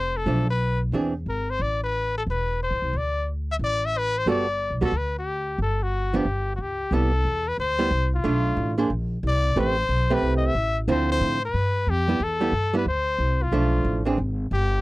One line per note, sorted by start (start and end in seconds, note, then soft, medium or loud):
0.00 0.23 F1 medium
0.00 0.19 C5 medium
0.17 0.49 A4 medium
0.26 0.90 B1 medium
0.26 0.45 F3 medium
0.26 0.46 A3 medium
0.26 0.46 D4 medium
0.50 0.80 B4 medium
0.92 1.24 E2 medium
0.92 1.12 E3 medium
0.92 1.13 C4 soft
0.92 1.13 D4 medium
0.92 1.13 G#4 medium
1.26 1.57 G#1 medium
1.26 1.52 A#4 medium
1.50 1.63 C5 medium
1.59 2.23 A1 medium
1.59 1.82 D5 medium
1.83 2.13 B4 medium
2.18 2.23 A4 medium
2.26 2.68 E1 medium
2.31 2.60 B4 medium
2.63 2.99 C5 medium
2.71 2.81 A1 medium
2.82 2.92 C2 medium
2.93 3.57 D2 medium
2.97 3.29 D5 medium
3.52 3.56 E5 medium
3.59 4.23 A1 medium
3.64 3.87 D5 medium
3.86 4.00 E5 medium
3.98 4.20 B4 loud
4.18 4.29 C5 medium
4.26 4.67 G1 medium
4.26 4.46 G3 medium
4.26 4.46 B3 medium
4.26 4.46 F#4 medium
4.26 4.46 A4 medium
4.26 4.79 D5 medium
4.71 4.81 B1 medium
4.81 4.91 D2 medium
4.81 4.92 G3 medium
4.81 4.92 B3 medium
4.81 4.92 F#4 medium
4.81 4.93 A4 medium
4.81 4.99 A4 medium
4.92 5.55 D2 medium
4.97 5.16 B4 medium
5.19 5.59 G4 medium
5.58 6.22 G1 medium
5.58 5.85 A4 medium
5.83 6.18 F#4 medium
6.14 6.25 F3 medium
6.14 6.25 B3 medium
6.14 6.25 D4 medium
6.14 6.55 G4 medium
6.25 6.56 G1 medium
6.56 6.89 C#2 medium
6.56 6.63 F#4 medium
6.61 6.96 G4 medium
6.91 7.24 C2 medium
6.91 7.11 G3 medium
6.91 7.11 B3 medium
6.91 7.12 E4 medium
6.91 7.50 A4 medium
7.25 7.57 E2 medium
7.48 7.59 B4 medium
7.58 7.90 D2 medium
7.58 8.09 C5 loud
7.79 7.90 G3 medium
7.79 7.90 B3 medium
7.79 7.90 E4 medium
7.91 8.23 C2 medium
8.15 8.76 F4 medium
8.24 8.56 B1 medium
8.24 8.74 A3 medium
8.24 8.74 D4 medium
8.24 8.74 F4 medium
8.57 8.89 A1 medium
8.78 8.89 A#3 medium
8.78 8.89 D4 medium
8.78 8.89 G#4 medium
8.78 8.90 C5 medium
8.90 9.22 A#1 medium
9.23 9.55 C2 medium
9.28 9.56 D5 loud
9.56 9.88 A1 medium
9.56 9.75 A3 medium
9.56 9.75 C4 medium
9.56 9.75 G4 medium
9.56 9.75 B4 medium
9.60 10.15 C5 loud
9.89 10.21 B1 medium
10.10 10.53 A3 medium
10.10 10.53 C4 medium
10.10 10.53 G4 medium
10.10 10.53 B4 medium
10.10 10.36 B4 medium
10.21 10.54 C2 medium
10.37 10.48 D#5 medium
10.47 10.78 E5 loud
10.55 10.87 A1 medium
10.88 11.20 D2 medium
10.88 11.38 D3 medium
10.88 11.38 F3 medium
10.88 11.38 C4 medium
10.88 11.38 E4 medium
10.88 11.09 C5 medium
11.12 11.41 C5 loud
11.21 11.53 A2 medium
11.45 11.91 B4 medium
11.54 11.86 G2 medium
11.87 12.19 F2 medium
11.87 12.25 G4 medium
12.08 12.19 G3 medium
12.08 12.19 B3 medium
12.08 12.20 E4 medium
12.20 12.51 E2 medium
12.20 12.75 A4 loud
12.41 12.52 G3 medium
12.41 12.52 B3 medium
12.41 12.52 E4 medium
12.52 12.85 G2 medium
12.73 12.85 G3 medium
12.73 12.85 B3 medium
12.73 12.85 E4 medium
12.73 12.87 B4 medium
12.85 13.18 D2 medium
12.85 13.44 C5 medium
13.18 13.51 C2 medium
13.43 14.07 F4 medium
13.52 13.84 B1 medium
13.52 14.02 F3 medium
13.52 14.02 A3 medium
13.52 14.02 D4 medium
13.84 14.17 A1 medium
14.05 14.17 E3 medium
14.05 14.17 C4 medium
14.05 14.17 D4 medium
14.05 14.17 G#4 medium
14.18 14.50 G#1 medium
14.51 14.81 G1 medium
14.51 14.81 G4 medium